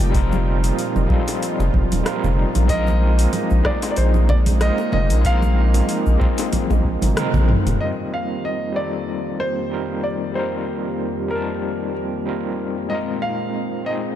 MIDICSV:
0, 0, Header, 1, 6, 480
1, 0, Start_track
1, 0, Tempo, 638298
1, 108, Time_signature, 4, 2, 24, 8
1, 10644, End_track
2, 0, Start_track
2, 0, Title_t, "Grand piano"
2, 0, Program_c, 0, 0
2, 0, Note_on_c, 0, 79, 93
2, 1270, Note_off_c, 0, 79, 0
2, 2027, Note_on_c, 0, 75, 98
2, 2751, Note_on_c, 0, 74, 92
2, 2769, Note_off_c, 0, 75, 0
2, 2929, Note_off_c, 0, 74, 0
2, 2942, Note_on_c, 0, 74, 71
2, 2988, Note_on_c, 0, 72, 80
2, 2989, Note_off_c, 0, 74, 0
2, 3230, Note_on_c, 0, 74, 97
2, 3235, Note_off_c, 0, 72, 0
2, 3284, Note_off_c, 0, 74, 0
2, 3470, Note_on_c, 0, 75, 105
2, 3695, Note_off_c, 0, 75, 0
2, 3706, Note_on_c, 0, 75, 101
2, 3955, Note_off_c, 0, 75, 0
2, 3955, Note_on_c, 0, 77, 106
2, 5362, Note_off_c, 0, 77, 0
2, 5870, Note_on_c, 0, 75, 82
2, 5923, Note_off_c, 0, 75, 0
2, 6118, Note_on_c, 0, 77, 85
2, 6337, Note_off_c, 0, 77, 0
2, 6353, Note_on_c, 0, 75, 87
2, 6588, Note_on_c, 0, 74, 84
2, 6598, Note_off_c, 0, 75, 0
2, 7068, Note_on_c, 0, 72, 98
2, 7083, Note_off_c, 0, 74, 0
2, 7547, Note_on_c, 0, 74, 77
2, 7563, Note_off_c, 0, 72, 0
2, 7786, Note_on_c, 0, 72, 80
2, 7795, Note_off_c, 0, 74, 0
2, 8502, Note_on_c, 0, 70, 82
2, 8529, Note_off_c, 0, 72, 0
2, 8955, Note_off_c, 0, 70, 0
2, 9699, Note_on_c, 0, 75, 90
2, 9754, Note_off_c, 0, 75, 0
2, 9941, Note_on_c, 0, 77, 93
2, 10425, Note_on_c, 0, 75, 88
2, 10439, Note_off_c, 0, 77, 0
2, 10479, Note_off_c, 0, 75, 0
2, 10644, End_track
3, 0, Start_track
3, 0, Title_t, "Tine electric piano"
3, 0, Program_c, 1, 4
3, 0, Control_c, 1, 64, 127
3, 0, Note_on_c, 1, 55, 91
3, 0, Note_on_c, 1, 57, 106
3, 0, Note_on_c, 1, 60, 79
3, 0, Note_on_c, 1, 63, 85
3, 0, Note_on_c, 1, 65, 81
3, 0, Note_on_c, 1, 70, 97
3, 77, Note_off_c, 1, 60, 0
3, 79, Note_off_c, 1, 55, 0
3, 79, Note_on_c, 1, 55, 98
3, 81, Note_off_c, 1, 63, 0
3, 83, Note_off_c, 1, 65, 0
3, 88, Note_off_c, 1, 70, 0
3, 91, Note_on_c, 1, 60, 90
3, 105, Note_on_c, 1, 63, 92
3, 121, Note_on_c, 1, 65, 88
3, 129, Note_on_c, 1, 70, 111
3, 788, Note_off_c, 1, 55, 0
3, 794, Note_off_c, 1, 60, 0
3, 801, Note_off_c, 1, 63, 0
3, 803, Note_on_c, 1, 55, 93
3, 809, Note_off_c, 1, 65, 0
3, 813, Note_off_c, 1, 70, 0
3, 815, Note_on_c, 1, 60, 87
3, 828, Note_on_c, 1, 63, 90
3, 844, Note_on_c, 1, 65, 89
3, 858, Note_on_c, 1, 69, 105
3, 1510, Note_off_c, 1, 55, 0
3, 1516, Note_off_c, 1, 60, 0
3, 1523, Note_off_c, 1, 63, 0
3, 1530, Note_off_c, 1, 65, 0
3, 1531, Note_on_c, 1, 55, 90
3, 1537, Note_off_c, 1, 69, 0
3, 1541, Note_on_c, 1, 60, 84
3, 1545, Note_on_c, 1, 63, 82
3, 1553, Note_on_c, 1, 65, 83
3, 1560, Note_on_c, 1, 70, 100
3, 1994, Note_off_c, 1, 55, 0
3, 1997, Note_on_c, 1, 56, 98
3, 1999, Note_off_c, 1, 60, 0
3, 2001, Note_off_c, 1, 63, 0
3, 2005, Note_off_c, 1, 65, 0
3, 2009, Note_off_c, 1, 70, 0
3, 2010, Note_on_c, 1, 60, 92
3, 2023, Note_on_c, 1, 63, 89
3, 2036, Note_on_c, 1, 65, 92
3, 2039, Control_c, 1, 64, 0
3, 2045, Note_off_c, 1, 57, 0
3, 2050, Note_on_c, 1, 70, 118
3, 2169, Control_c, 1, 64, 127
3, 2707, Note_off_c, 1, 56, 0
3, 2713, Note_off_c, 1, 60, 0
3, 2720, Note_off_c, 1, 63, 0
3, 2721, Note_on_c, 1, 56, 96
3, 2727, Note_off_c, 1, 65, 0
3, 2733, Note_off_c, 1, 70, 0
3, 2733, Note_on_c, 1, 60, 84
3, 2747, Note_on_c, 1, 63, 86
3, 2760, Note_on_c, 1, 65, 85
3, 2773, Note_on_c, 1, 68, 106
3, 3429, Note_off_c, 1, 56, 0
3, 3435, Note_off_c, 1, 60, 0
3, 3442, Note_off_c, 1, 63, 0
3, 3448, Note_off_c, 1, 65, 0
3, 3455, Note_off_c, 1, 68, 0
3, 3456, Note_on_c, 1, 56, 97
3, 3462, Note_on_c, 1, 60, 80
3, 3469, Note_on_c, 1, 63, 86
3, 3475, Note_on_c, 1, 65, 81
3, 3484, Note_on_c, 1, 70, 103
3, 3911, Note_off_c, 1, 56, 0
3, 3919, Note_off_c, 1, 60, 0
3, 3920, Note_on_c, 1, 56, 102
3, 3923, Note_off_c, 1, 63, 0
3, 3926, Note_off_c, 1, 65, 0
3, 3931, Note_off_c, 1, 70, 0
3, 3935, Note_on_c, 1, 60, 90
3, 3947, Note_on_c, 1, 63, 93
3, 3959, Note_on_c, 1, 65, 95
3, 3976, Note_on_c, 1, 70, 107
3, 4628, Note_off_c, 1, 56, 0
3, 4636, Note_off_c, 1, 60, 0
3, 4642, Note_off_c, 1, 63, 0
3, 4644, Note_on_c, 1, 56, 95
3, 4648, Note_off_c, 1, 65, 0
3, 4656, Note_off_c, 1, 70, 0
3, 4658, Note_on_c, 1, 60, 95
3, 4670, Note_on_c, 1, 63, 90
3, 4685, Note_on_c, 1, 65, 89
3, 4697, Note_on_c, 1, 68, 102
3, 5350, Note_off_c, 1, 56, 0
3, 5358, Note_off_c, 1, 60, 0
3, 5364, Note_off_c, 1, 63, 0
3, 5371, Note_off_c, 1, 65, 0
3, 5375, Note_on_c, 1, 56, 93
3, 5377, Note_off_c, 1, 68, 0
3, 5383, Note_on_c, 1, 60, 86
3, 5388, Note_on_c, 1, 63, 86
3, 5396, Note_on_c, 1, 65, 85
3, 5402, Note_on_c, 1, 70, 106
3, 5836, Note_off_c, 1, 56, 0
3, 5840, Note_off_c, 1, 60, 0
3, 5842, Note_off_c, 1, 63, 0
3, 5842, Note_on_c, 1, 55, 81
3, 5846, Note_off_c, 1, 65, 0
3, 5850, Note_off_c, 1, 70, 0
3, 5855, Note_on_c, 1, 60, 72
3, 5871, Note_on_c, 1, 63, 74
3, 5877, Control_c, 1, 64, 0
3, 5884, Note_on_c, 1, 65, 77
3, 5898, Note_on_c, 1, 70, 84
3, 5987, Control_c, 1, 64, 127
3, 6549, Note_off_c, 1, 55, 0
3, 6556, Note_off_c, 1, 60, 0
3, 6560, Note_on_c, 1, 55, 79
3, 6564, Note_off_c, 1, 63, 0
3, 6571, Note_off_c, 1, 65, 0
3, 6574, Note_on_c, 1, 60, 68
3, 6577, Note_off_c, 1, 70, 0
3, 6588, Note_on_c, 1, 63, 70
3, 6601, Note_on_c, 1, 65, 71
3, 6613, Note_on_c, 1, 69, 82
3, 7268, Note_off_c, 1, 55, 0
3, 7276, Note_off_c, 1, 60, 0
3, 7282, Note_off_c, 1, 63, 0
3, 7289, Note_off_c, 1, 65, 0
3, 7293, Note_on_c, 1, 55, 77
3, 7295, Note_off_c, 1, 69, 0
3, 7300, Note_on_c, 1, 60, 72
3, 7309, Note_on_c, 1, 63, 70
3, 7316, Note_on_c, 1, 65, 70
3, 7324, Note_on_c, 1, 70, 84
3, 7755, Note_off_c, 1, 55, 0
3, 7758, Note_off_c, 1, 60, 0
3, 7763, Note_off_c, 1, 63, 0
3, 7763, Note_on_c, 1, 55, 83
3, 7767, Note_off_c, 1, 65, 0
3, 7770, Note_off_c, 1, 70, 0
3, 7774, Note_on_c, 1, 60, 77
3, 7788, Note_on_c, 1, 63, 79
3, 7802, Note_on_c, 1, 65, 77
3, 7814, Note_on_c, 1, 70, 94
3, 8470, Note_off_c, 1, 55, 0
3, 8475, Note_off_c, 1, 60, 0
3, 8482, Note_off_c, 1, 63, 0
3, 8484, Note_on_c, 1, 55, 81
3, 8490, Note_off_c, 1, 65, 0
3, 8496, Note_off_c, 1, 70, 0
3, 8499, Note_on_c, 1, 60, 79
3, 8511, Note_on_c, 1, 63, 71
3, 8527, Note_on_c, 1, 65, 73
3, 8538, Note_on_c, 1, 81, 95
3, 9191, Note_off_c, 1, 55, 0
3, 9198, Note_off_c, 1, 60, 0
3, 9204, Note_off_c, 1, 63, 0
3, 9212, Note_off_c, 1, 65, 0
3, 9215, Note_on_c, 1, 55, 77
3, 9218, Note_off_c, 1, 81, 0
3, 9222, Note_on_c, 1, 60, 74
3, 9228, Note_on_c, 1, 63, 71
3, 9235, Note_on_c, 1, 65, 69
3, 9240, Note_on_c, 1, 70, 85
3, 9676, Note_off_c, 1, 55, 0
3, 9679, Note_off_c, 1, 60, 0
3, 9679, Note_on_c, 1, 56, 83
3, 9683, Note_off_c, 1, 63, 0
3, 9686, Note_off_c, 1, 65, 0
3, 9689, Note_off_c, 1, 70, 0
3, 9694, Note_on_c, 1, 60, 76
3, 9709, Note_on_c, 1, 63, 75
3, 9718, Control_c, 1, 64, 0
3, 9720, Note_on_c, 1, 65, 80
3, 9736, Note_on_c, 1, 70, 94
3, 9854, Control_c, 1, 64, 127
3, 10388, Note_off_c, 1, 56, 0
3, 10395, Note_off_c, 1, 60, 0
3, 10400, Note_on_c, 1, 56, 77
3, 10403, Note_off_c, 1, 63, 0
3, 10409, Note_off_c, 1, 65, 0
3, 10412, Note_on_c, 1, 60, 80
3, 10416, Note_off_c, 1, 70, 0
3, 10426, Note_on_c, 1, 63, 81
3, 10439, Note_on_c, 1, 65, 76
3, 10453, Note_on_c, 1, 68, 90
3, 10644, Note_off_c, 1, 56, 0
3, 10644, Note_off_c, 1, 60, 0
3, 10644, Note_off_c, 1, 63, 0
3, 10644, Note_off_c, 1, 65, 0
3, 10644, Note_off_c, 1, 68, 0
3, 10644, End_track
4, 0, Start_track
4, 0, Title_t, "Analog synth pad"
4, 0, Program_c, 2, 89
4, 0, Note_on_c, 2, 46, 86
4, 0, Note_on_c, 2, 53, 79
4, 0, Note_on_c, 2, 63, 70
4, 0, Note_on_c, 2, 67, 69
4, 88, Note_off_c, 2, 67, 0
4, 106, Note_on_c, 2, 65, 71
4, 1995, Note_off_c, 2, 53, 0
4, 1997, Note_off_c, 2, 46, 0
4, 1999, Note_off_c, 2, 63, 0
4, 2008, Note_off_c, 2, 65, 0
4, 2024, Note_on_c, 2, 58, 75
4, 2025, Note_on_c, 2, 63, 88
4, 2028, Note_on_c, 2, 56, 74
4, 5836, Note_off_c, 2, 58, 0
4, 5837, Note_off_c, 2, 63, 0
4, 5838, Note_off_c, 2, 56, 0
4, 5866, Note_on_c, 2, 58, 63
4, 5869, Note_on_c, 2, 41, 64
4, 5869, Note_on_c, 2, 51, 59
4, 5869, Note_on_c, 2, 67, 75
4, 9677, Note_off_c, 2, 58, 0
4, 9679, Note_off_c, 2, 41, 0
4, 9679, Note_off_c, 2, 51, 0
4, 9679, Note_off_c, 2, 67, 0
4, 9702, Note_on_c, 2, 60, 66
4, 9702, Note_on_c, 2, 63, 75
4, 9705, Note_on_c, 2, 46, 70
4, 9707, Note_on_c, 2, 56, 66
4, 10644, Note_off_c, 2, 46, 0
4, 10644, Note_off_c, 2, 56, 0
4, 10644, Note_off_c, 2, 60, 0
4, 10644, Note_off_c, 2, 63, 0
4, 10644, End_track
5, 0, Start_track
5, 0, Title_t, "Analog synth bass"
5, 0, Program_c, 3, 38
5, 0, Note_on_c, 3, 29, 100
5, 535, Note_off_c, 3, 29, 0
5, 720, Note_on_c, 3, 29, 103
5, 795, Note_off_c, 3, 29, 0
5, 1198, Note_on_c, 3, 29, 96
5, 1274, Note_off_c, 3, 29, 0
5, 1308, Note_on_c, 3, 29, 85
5, 1400, Note_off_c, 3, 29, 0
5, 1443, Note_on_c, 3, 27, 103
5, 1516, Note_off_c, 3, 27, 0
5, 1684, Note_on_c, 3, 29, 87
5, 1841, Note_off_c, 3, 29, 0
5, 1924, Note_on_c, 3, 34, 87
5, 2457, Note_off_c, 3, 34, 0
5, 2642, Note_on_c, 3, 34, 111
5, 2716, Note_off_c, 3, 34, 0
5, 2990, Note_on_c, 3, 34, 83
5, 3537, Note_off_c, 3, 34, 0
5, 3708, Note_on_c, 3, 29, 81
5, 3837, Note_on_c, 3, 34, 96
5, 3849, Note_off_c, 3, 29, 0
5, 4374, Note_off_c, 3, 34, 0
5, 4562, Note_on_c, 3, 34, 100
5, 4636, Note_off_c, 3, 34, 0
5, 5041, Note_on_c, 3, 34, 105
5, 5116, Note_off_c, 3, 34, 0
5, 5147, Note_on_c, 3, 34, 84
5, 5240, Note_off_c, 3, 34, 0
5, 5281, Note_on_c, 3, 32, 102
5, 5356, Note_off_c, 3, 32, 0
5, 5518, Note_on_c, 3, 34, 93
5, 5678, Note_off_c, 3, 34, 0
5, 5761, Note_on_c, 3, 29, 95
5, 5836, Note_off_c, 3, 29, 0
5, 10644, End_track
6, 0, Start_track
6, 0, Title_t, "Drums"
6, 0, Note_on_c, 9, 46, 54
6, 0, Note_on_c, 9, 82, 66
6, 72, Note_off_c, 9, 46, 0
6, 73, Note_off_c, 9, 82, 0
6, 107, Note_on_c, 9, 36, 113
6, 109, Note_on_c, 9, 46, 42
6, 109, Note_on_c, 9, 64, 81
6, 109, Note_on_c, 9, 82, 52
6, 182, Note_off_c, 9, 36, 0
6, 184, Note_off_c, 9, 46, 0
6, 184, Note_off_c, 9, 64, 0
6, 184, Note_off_c, 9, 82, 0
6, 241, Note_on_c, 9, 82, 34
6, 245, Note_on_c, 9, 63, 93
6, 317, Note_off_c, 9, 82, 0
6, 320, Note_off_c, 9, 63, 0
6, 480, Note_on_c, 9, 46, 55
6, 480, Note_on_c, 9, 82, 69
6, 555, Note_off_c, 9, 46, 0
6, 556, Note_off_c, 9, 82, 0
6, 591, Note_on_c, 9, 46, 45
6, 591, Note_on_c, 9, 82, 59
6, 666, Note_off_c, 9, 46, 0
6, 666, Note_off_c, 9, 82, 0
6, 722, Note_on_c, 9, 64, 79
6, 722, Note_on_c, 9, 82, 35
6, 797, Note_off_c, 9, 64, 0
6, 797, Note_off_c, 9, 82, 0
6, 826, Note_on_c, 9, 36, 109
6, 827, Note_on_c, 9, 63, 73
6, 901, Note_off_c, 9, 36, 0
6, 902, Note_off_c, 9, 63, 0
6, 960, Note_on_c, 9, 46, 56
6, 960, Note_on_c, 9, 82, 63
6, 968, Note_on_c, 9, 60, 67
6, 1036, Note_off_c, 9, 46, 0
6, 1036, Note_off_c, 9, 82, 0
6, 1043, Note_off_c, 9, 60, 0
6, 1072, Note_on_c, 9, 46, 47
6, 1072, Note_on_c, 9, 82, 56
6, 1147, Note_off_c, 9, 46, 0
6, 1147, Note_off_c, 9, 82, 0
6, 1203, Note_on_c, 9, 82, 33
6, 1204, Note_on_c, 9, 60, 51
6, 1278, Note_off_c, 9, 82, 0
6, 1279, Note_off_c, 9, 60, 0
6, 1306, Note_on_c, 9, 36, 104
6, 1308, Note_on_c, 9, 64, 77
6, 1381, Note_off_c, 9, 36, 0
6, 1384, Note_off_c, 9, 64, 0
6, 1443, Note_on_c, 9, 46, 54
6, 1443, Note_on_c, 9, 82, 59
6, 1447, Note_on_c, 9, 63, 88
6, 1518, Note_off_c, 9, 46, 0
6, 1518, Note_off_c, 9, 82, 0
6, 1522, Note_off_c, 9, 63, 0
6, 1549, Note_on_c, 9, 37, 70
6, 1549, Note_on_c, 9, 46, 45
6, 1549, Note_on_c, 9, 82, 54
6, 1624, Note_off_c, 9, 37, 0
6, 1624, Note_off_c, 9, 46, 0
6, 1624, Note_off_c, 9, 82, 0
6, 1684, Note_on_c, 9, 82, 32
6, 1687, Note_on_c, 9, 64, 98
6, 1759, Note_off_c, 9, 82, 0
6, 1762, Note_off_c, 9, 64, 0
6, 1919, Note_on_c, 9, 46, 55
6, 1919, Note_on_c, 9, 64, 90
6, 1919, Note_on_c, 9, 82, 65
6, 1994, Note_off_c, 9, 46, 0
6, 1994, Note_off_c, 9, 64, 0
6, 1994, Note_off_c, 9, 82, 0
6, 2024, Note_on_c, 9, 46, 46
6, 2024, Note_on_c, 9, 82, 51
6, 2026, Note_on_c, 9, 36, 121
6, 2099, Note_off_c, 9, 46, 0
6, 2099, Note_off_c, 9, 82, 0
6, 2102, Note_off_c, 9, 36, 0
6, 2156, Note_on_c, 9, 82, 33
6, 2168, Note_on_c, 9, 63, 89
6, 2232, Note_off_c, 9, 82, 0
6, 2243, Note_off_c, 9, 63, 0
6, 2397, Note_on_c, 9, 46, 57
6, 2397, Note_on_c, 9, 82, 64
6, 2472, Note_off_c, 9, 46, 0
6, 2472, Note_off_c, 9, 82, 0
6, 2503, Note_on_c, 9, 46, 48
6, 2503, Note_on_c, 9, 64, 88
6, 2503, Note_on_c, 9, 82, 57
6, 2578, Note_off_c, 9, 46, 0
6, 2578, Note_off_c, 9, 64, 0
6, 2579, Note_off_c, 9, 82, 0
6, 2633, Note_on_c, 9, 82, 32
6, 2708, Note_off_c, 9, 82, 0
6, 2744, Note_on_c, 9, 37, 78
6, 2746, Note_on_c, 9, 36, 101
6, 2750, Note_on_c, 9, 63, 66
6, 2819, Note_off_c, 9, 37, 0
6, 2821, Note_off_c, 9, 36, 0
6, 2826, Note_off_c, 9, 63, 0
6, 2875, Note_on_c, 9, 46, 57
6, 2875, Note_on_c, 9, 82, 62
6, 2881, Note_on_c, 9, 60, 78
6, 2950, Note_off_c, 9, 46, 0
6, 2951, Note_off_c, 9, 82, 0
6, 2956, Note_off_c, 9, 60, 0
6, 2981, Note_on_c, 9, 46, 44
6, 2981, Note_on_c, 9, 82, 52
6, 3056, Note_off_c, 9, 46, 0
6, 3056, Note_off_c, 9, 82, 0
6, 3115, Note_on_c, 9, 64, 87
6, 3115, Note_on_c, 9, 82, 34
6, 3190, Note_off_c, 9, 64, 0
6, 3190, Note_off_c, 9, 82, 0
6, 3226, Note_on_c, 9, 60, 63
6, 3227, Note_on_c, 9, 36, 110
6, 3232, Note_on_c, 9, 64, 93
6, 3301, Note_off_c, 9, 60, 0
6, 3302, Note_off_c, 9, 36, 0
6, 3307, Note_off_c, 9, 64, 0
6, 3355, Note_on_c, 9, 46, 55
6, 3355, Note_on_c, 9, 63, 88
6, 3356, Note_on_c, 9, 82, 61
6, 3359, Note_on_c, 9, 64, 78
6, 3430, Note_off_c, 9, 63, 0
6, 3431, Note_off_c, 9, 46, 0
6, 3431, Note_off_c, 9, 82, 0
6, 3434, Note_off_c, 9, 64, 0
6, 3465, Note_on_c, 9, 37, 74
6, 3465, Note_on_c, 9, 46, 48
6, 3465, Note_on_c, 9, 82, 49
6, 3540, Note_off_c, 9, 37, 0
6, 3540, Note_off_c, 9, 46, 0
6, 3541, Note_off_c, 9, 82, 0
6, 3595, Note_on_c, 9, 60, 57
6, 3598, Note_on_c, 9, 82, 31
6, 3671, Note_off_c, 9, 60, 0
6, 3673, Note_off_c, 9, 82, 0
6, 3702, Note_on_c, 9, 64, 82
6, 3706, Note_off_c, 9, 64, 0
6, 3706, Note_on_c, 9, 64, 88
6, 3781, Note_off_c, 9, 64, 0
6, 3836, Note_on_c, 9, 46, 63
6, 3836, Note_on_c, 9, 82, 65
6, 3911, Note_off_c, 9, 46, 0
6, 3911, Note_off_c, 9, 82, 0
6, 3946, Note_on_c, 9, 46, 44
6, 3946, Note_on_c, 9, 82, 51
6, 3948, Note_on_c, 9, 36, 126
6, 4021, Note_off_c, 9, 46, 0
6, 4021, Note_off_c, 9, 82, 0
6, 4023, Note_off_c, 9, 36, 0
6, 4078, Note_on_c, 9, 63, 83
6, 4081, Note_on_c, 9, 82, 33
6, 4154, Note_off_c, 9, 63, 0
6, 4156, Note_off_c, 9, 82, 0
6, 4319, Note_on_c, 9, 46, 57
6, 4319, Note_on_c, 9, 64, 86
6, 4319, Note_on_c, 9, 82, 69
6, 4325, Note_on_c, 9, 60, 38
6, 4394, Note_off_c, 9, 46, 0
6, 4394, Note_off_c, 9, 64, 0
6, 4394, Note_off_c, 9, 82, 0
6, 4401, Note_off_c, 9, 60, 0
6, 4427, Note_on_c, 9, 46, 49
6, 4427, Note_on_c, 9, 82, 53
6, 4502, Note_off_c, 9, 46, 0
6, 4502, Note_off_c, 9, 82, 0
6, 4558, Note_on_c, 9, 82, 36
6, 4633, Note_off_c, 9, 82, 0
6, 4668, Note_on_c, 9, 36, 103
6, 4672, Note_on_c, 9, 63, 67
6, 4743, Note_off_c, 9, 36, 0
6, 4747, Note_off_c, 9, 63, 0
6, 4797, Note_on_c, 9, 46, 61
6, 4798, Note_on_c, 9, 82, 65
6, 4809, Note_on_c, 9, 60, 80
6, 4873, Note_off_c, 9, 46, 0
6, 4873, Note_off_c, 9, 82, 0
6, 4884, Note_off_c, 9, 60, 0
6, 4907, Note_on_c, 9, 46, 51
6, 4907, Note_on_c, 9, 48, 61
6, 4907, Note_on_c, 9, 64, 84
6, 4908, Note_on_c, 9, 36, 62
6, 4908, Note_on_c, 9, 82, 54
6, 4983, Note_off_c, 9, 36, 0
6, 4983, Note_off_c, 9, 46, 0
6, 4983, Note_off_c, 9, 48, 0
6, 4983, Note_off_c, 9, 64, 0
6, 4983, Note_off_c, 9, 82, 0
6, 5039, Note_on_c, 9, 48, 61
6, 5039, Note_on_c, 9, 82, 34
6, 5043, Note_on_c, 9, 60, 48
6, 5115, Note_off_c, 9, 48, 0
6, 5115, Note_off_c, 9, 82, 0
6, 5118, Note_off_c, 9, 60, 0
6, 5147, Note_on_c, 9, 36, 103
6, 5222, Note_off_c, 9, 36, 0
6, 5278, Note_on_c, 9, 63, 92
6, 5282, Note_on_c, 9, 46, 56
6, 5282, Note_on_c, 9, 47, 63
6, 5282, Note_on_c, 9, 82, 64
6, 5353, Note_off_c, 9, 63, 0
6, 5357, Note_off_c, 9, 46, 0
6, 5357, Note_off_c, 9, 47, 0
6, 5357, Note_off_c, 9, 82, 0
6, 5392, Note_on_c, 9, 37, 85
6, 5392, Note_on_c, 9, 46, 46
6, 5392, Note_on_c, 9, 47, 86
6, 5392, Note_on_c, 9, 82, 56
6, 5467, Note_off_c, 9, 37, 0
6, 5467, Note_off_c, 9, 46, 0
6, 5467, Note_off_c, 9, 47, 0
6, 5467, Note_off_c, 9, 82, 0
6, 5519, Note_on_c, 9, 64, 109
6, 5521, Note_off_c, 9, 64, 0
6, 5521, Note_on_c, 9, 47, 80
6, 5521, Note_on_c, 9, 64, 83
6, 5521, Note_on_c, 9, 82, 32
6, 5596, Note_off_c, 9, 47, 0
6, 5596, Note_off_c, 9, 64, 0
6, 5596, Note_off_c, 9, 82, 0
6, 5628, Note_on_c, 9, 45, 106
6, 5703, Note_off_c, 9, 45, 0
6, 5765, Note_on_c, 9, 45, 91
6, 5765, Note_on_c, 9, 46, 59
6, 5766, Note_on_c, 9, 64, 81
6, 5766, Note_on_c, 9, 82, 66
6, 5841, Note_off_c, 9, 45, 0
6, 5841, Note_off_c, 9, 46, 0
6, 5841, Note_off_c, 9, 64, 0
6, 5841, Note_off_c, 9, 82, 0
6, 10644, End_track
0, 0, End_of_file